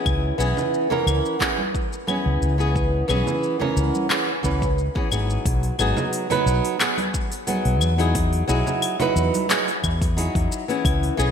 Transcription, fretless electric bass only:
0.06 0.30 C#2 medium
0.39 0.52 B1 medium
1.06 1.19 C#2 medium
2.26 2.37 C#2 medium
2.41 3.02 C#2 medium
3.09 3.22 B1 loud
3.77 3.89 C#2 loud
4.44 4.87 C#2 loud
5.12 5.36 G#1 medium
5.45 5.70 B1 medium
5.79 5.92 G#1 loud
6.46 6.59 B1 medium
7.65 7.81 B1 medium
7.81 8.41 E2 medium
8.49 8.61 B1 loud
9.16 9.29 E2 medium
9.84 10.27 E2 loud
10.35 10.46 E2 medium
10.85 11.09 C#2 medium
11.18 11.31 B1 loud

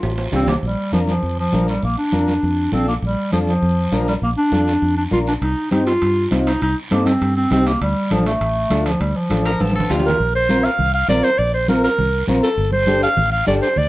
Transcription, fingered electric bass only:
0.03 0.27 A1 medium
0.33 0.57 C2 medium
0.63 0.75 A#1 medium
0.93 1.17 F2 medium
1.23 1.47 F2 medium
1.53 1.77 A#1 medium
1.83 1.95 A#1 medium
2.13 2.37 F2 medium
2.43 2.67 F2 medium
2.73 2.97 A#1 medium
3.02 3.14 A#1 medium
3.33 3.57 F2 medium
3.62 3.86 F2 medium
3.92 4.16 A#1 medium
4.22 4.34 A#1 medium
4.52 4.76 F2 medium
4.82 5.06 F2 medium
5.12 5.36 A#1 medium
5.41 5.54 C2 medium
5.72 5.96 G2 medium
6.02 6.26 G2 medium
6.31 6.55 C2 medium
6.62 6.74 C2 medium
6.91 7.15 G2 medium
7.21 7.45 G2 medium
7.51 7.75 C2 medium
7.81 7.93 D2 medium
8.11 8.35 A1 medium
8.41 8.65 A1 medium
8.71 8.94 D2 medium
9.01 9.12 D2 medium
9.31 9.54 A1 medium
9.60 9.84 A1 medium
9.90 10.14 D2 medium
10.20 10.68 A#1 medium
10.79 11.03 C2 medium
11.09 11.21 A#1 medium
11.39 11.87 A#1 medium
11.99 12.22 C2 loud
12.28 12.40 A#1 medium
12.58 13.05 G1 loud
13.17 13.41 A1 loud
13.48 13.59 G1 medium
13.77 13.89 D2 medium

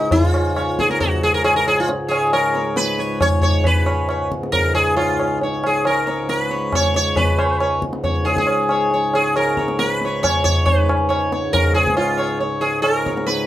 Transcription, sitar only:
0.00 0.12 D#4 medium
0.12 0.27 E4 loud
0.27 0.80 F4 loud
0.57 0.77 C#5 soft
0.80 0.89 G#4 medium
0.90 1.00 A#4 medium
1.00 1.23 F#4 medium
1.23 1.34 G#4 medium
1.34 1.44 A#4 medium
1.44 1.55 G#4 medium
1.56 1.67 A#4 medium
1.68 1.78 G#4 medium
1.80 1.89 F4 medium
2.08 2.32 G#4 medium
2.08 2.30 C#5 soft
2.33 2.78 A#4 medium
2.33 2.54 C#5 soft
2.55 2.75 C#5 soft
2.77 3.21 B4 medium
2.99 3.19 C#5 soft
3.21 3.40 C#5 medium
3.42 3.43 C#5 soft
3.42 3.66 C#5 medium
3.67 4.28 B4 medium
3.86 4.07 C#5 soft
4.10 4.30 C#5 soft
4.52 4.74 A#4 loud
4.75 4.96 G#4 medium
4.96 5.38 F4 medium
5.43 5.63 C#5 soft
5.66 5.86 G#4 medium
5.87 6.29 A#4 medium
6.08 6.28 C#5 soft
6.29 6.40 A#4 medium
6.40 6.74 B4 medium
6.51 6.71 C#5 soft
6.75 6.95 C#5 medium
6.96 7.18 C#5 medium
7.17 7.79 B4 medium
7.38 7.59 C#5 soft
7.61 7.81 C#5 soft
8.04 8.25 C#5 soft
8.25 8.37 G#4 medium
8.38 8.99 G#4 medium
8.70 8.91 C#5 soft
8.94 9.13 C#5 soft
9.15 9.36 G#4 medium
9.37 9.78 A#4 medium
9.59 9.79 C#5 soft
9.79 9.91 A#4 medium
9.91 10.24 B4 medium
10.05 10.22 C#5 soft
10.23 10.43 C#5 medium
10.44 10.67 C#5 medium
10.66 11.27 B4 medium
11.09 11.30 C#5 soft
11.33 11.53 C#5 soft
11.53 11.74 A#4 loud
11.74 11.97 G#4 medium
11.97 12.38 F4 medium
12.17 12.38 C#5 soft
12.40 12.61 C#5 soft
12.61 12.82 G#4 medium
12.82 12.97 A4 medium
12.97 13.28 A#4 medium
13.07 13.26 C#5 soft
13.27 13.47 B4 medium

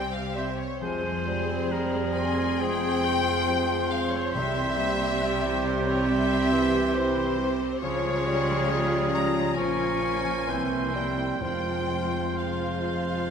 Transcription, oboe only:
0.37 0.53 C5 soft
0.82 1.73 C5 soft
1.72 2.62 A#4 soft
2.60 3.05 G#4 medium
3.04 5.24 C5 medium
5.22 7.55 G4 medium
7.81 9.52 G#4 medium
9.57 10.51 A#4 soft
10.49 11.41 C5 soft
11.42 13.30 C5 soft

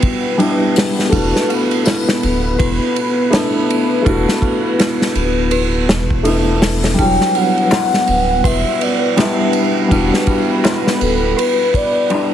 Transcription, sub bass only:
1.13 1.32 E1 loud
2.24 2.56 D1 medium
2.60 2.79 E1 medium
4.06 4.25 E1 loud
5.15 5.90 D1 medium
5.88 6.95 E1 medium
6.99 7.18 E1 loud
8.08 8.41 D1 medium
8.45 8.64 E1 medium
9.92 10.10 E1 loud
11.01 11.34 D1 medium

